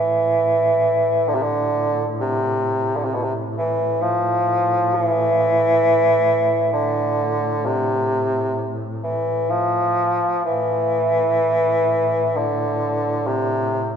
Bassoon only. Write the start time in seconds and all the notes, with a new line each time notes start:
Already playing: E3
1.28 D3
1.34 C3
1.42 D3
2.20 C3
2.96 D3
3.05 C3
3.14 B2
3.23 C3
3.58 E3
4.02 F3
4.94 E3
6.73 D3
7.66 C3
9.04 E3
9.50 F3
10.45 E3
12.36 D3
13.27 C3